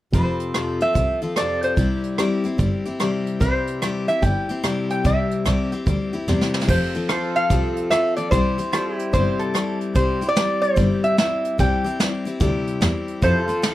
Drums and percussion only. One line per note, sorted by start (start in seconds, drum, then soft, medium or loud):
0.14 kick medium
0.14 closed hi-hat medium
0.40 closed hi-hat medium
0.54 cross-stick medium
0.54 closed hi-hat medium
0.80 closed hi-hat medium
0.95 kick medium
0.95 closed hi-hat medium
1.21 closed hi-hat medium
1.36 cross-stick medium
1.36 closed hi-hat medium
1.62 closed hi-hat medium
1.77 kick medium
1.77 closed hi-hat medium
2.04 closed hi-hat medium
2.18 cross-stick medium
2.18 closed hi-hat medium
2.44 closed hi-hat soft
2.59 kick medium
2.59 closed hi-hat medium
2.85 closed hi-hat soft
3.00 cross-stick medium
3.00 closed hi-hat medium
3.26 closed hi-hat soft
3.41 kick medium
3.41 closed hi-hat medium
3.67 closed hi-hat medium
3.82 cross-stick medium
3.82 closed hi-hat medium
4.08 closed hi-hat medium
4.23 kick medium
4.23 closed hi-hat medium
4.49 closed hi-hat medium
4.64 cross-stick medium
4.64 closed hi-hat medium
4.90 closed hi-hat medium
5.05 kick medium
5.05 closed hi-hat medium
5.31 closed hi-hat medium
5.46 cross-stick medium
5.46 closed hi-hat medium
5.72 closed hi-hat soft
5.87 kick medium
5.87 closed hi-hat medium
6.13 closed hi-hat soft
6.28 snare soft
6.41 snare soft
6.54 snare medium
6.61 snare medium
6.69 kick loud
6.69 crash medium
6.94 closed hi-hat medium
7.09 cross-stick loud
7.09 closed hi-hat medium
7.35 closed hi-hat medium
7.50 kick medium
7.50 closed hi-hat medium
7.76 closed hi-hat medium
7.91 cross-stick loud
7.91 closed hi-hat medium
8.17 closed hi-hat medium
8.32 kick loud
8.32 closed hi-hat medium
8.58 closed hi-hat medium
8.73 cross-stick medium
8.73 closed hi-hat medium
8.99 closed hi-hat medium
9.14 kick medium
9.14 closed hi-hat medium
9.40 closed hi-hat medium
9.55 cross-stick medium
9.55 closed hi-hat medium
9.81 closed hi-hat medium
9.96 kick loud
9.96 closed hi-hat medium
10.22 closed hi-hat medium
10.37 snare loud
10.37 closed hi-hat medium
10.63 closed hi-hat medium
10.77 kick loud
10.77 closed hi-hat medium
11.03 closed hi-hat medium
11.18 snare medium
11.18 closed hi-hat medium
11.45 closed hi-hat medium
11.59 kick loud
11.59 closed hi-hat medium
11.86 closed hi-hat medium
12.00 snare loud
12.00 closed hi-hat medium
12.26 closed hi-hat medium
12.41 kick loud
12.41 closed hi-hat medium
12.67 closed hi-hat medium
12.82 snare medium
12.82 closed hi-hat medium
13.08 closed hi-hat medium
13.22 kick medium
13.22 closed hi-hat medium
13.49 closed hi-hat medium
13.63 snare loud
13.63 closed hi-hat medium